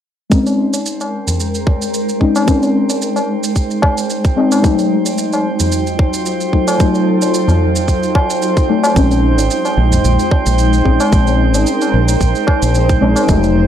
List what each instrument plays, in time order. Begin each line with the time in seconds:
0.30 synth stab G#3 C4 C#4, ambient pad G#3, synth texture C4 C5, kick, shaker
0.34 synth stab D#4
0.46 tabla tin, shaker
0.53 ambient pad A#4
0.73 tabla tin, shaker
0.79 ambient pad D#4
0.86 shaker
1.01 tabla na, shaker
1.27 tabla ge, shaker
1.40 shaker
1.55 shaker
1.67 kick, tabla tin
1.82 shaker
1.94 shaker
2.09 shaker
2.20 synth stab G#3 C4 C#4 D#4, kick
2.26 ambient pad C5
2.36 tabla na, shaker
2.46 synth stab G#3 C4 C#4, kick, shaker
2.50 synth stab D#4
2.62 tabla tin, shaker
2.90 tabla tin, shaker
3.02 shaker
3.16 tabla na, shaker
3.43 tabla tin, shaker
3.56 kick, shaker
3.71 shaker
3.82 kick, tabla na
3.98 shaker
4.10 shaker
4.25 kick, shaker
4.36 synth stab G#3 C4 C#4 D#4, tabla tin
4.52 tabla na, shaker
4.62 synth stab F#3 A3 D#4, ambient pad F#3, kick, shaker
4.79 tabla tin, shaker
5.06 tabla tin, shaker
5.18 ambient pad F4, shaker
5.33 tabla na, shaker
5.60 tabla ge, shaker
5.72 shaker
5.87 ambient pad A4, shaker
5.99 kick, tabla tin
6.13 shaker
6.26 shaker
6.41 shaker
6.52 synth stab F#3 A3 D#4, kick
6.68 tabla na, shaker
6.78 synth stab F#3 A3 D#4, kick, shaker
6.95 tabla tin, shaker
7.22 tabla tin, shaker
7.34 shaker
7.48 tabla na, tabla ge, shaker
7.76 tabla tin, shaker
7.88 kick, shaker
8.03 shaker
8.15 kick, tabla na
8.30 shaker
8.42 shaker
8.57 kick, shaker
8.68 synth stab F#3 A3 D#4, tabla tin
8.83 tabla na, shaker
8.94 fretless electric bass A#1, synth stab G#3 C4 C#4, ambient pad G#3, kick, shaker
8.98 synth stab D#4
9.11 tabla tin, shaker
9.38 fretless electric bass G#1, tabla tin, shaker
9.51 shaker
9.65 tabla na, shaker
9.77 fretless electric bass A#1
9.92 tabla ge, shaker
10.05 fretless electric bass A#1, shaker
10.19 shaker
10.31 kick, tabla tin
10.46 fretless electric bass A#1, shaker
10.58 shaker
10.73 shaker
10.84 fretless electric bass A#1, synth stab G#3 C4 C#4 D#4, ambient pad A#4, kick
11.00 tabla na, shaker
11.11 fretless electric bass A#1, synth stab G#3 C4 C#4, kick, shaker
11.15 synth stab D#4
11.27 tabla tin, shaker
11.54 fretless electric bass G#1, tabla tin, shaker
11.66 shaker
11.81 tabla na, shaker
11.94 fretless electric bass A#1
12.08 tabla tin, shaker
12.21 fretless electric bass A#1, kick, shaker
12.35 shaker
12.47 kick, tabla na
12.62 fretless electric bass A#1, shaker
12.75 shaker
12.89 kick, shaker
13.01 fretless electric bass A#1, synth stab G#3 C4 C#4 D#4, tabla tin
13.16 tabla na, shaker
13.27 fretless electric bass F1, synth stab F#3 A3 D#4, ambient pad F#3, kick, shaker
13.43 tabla tin, shaker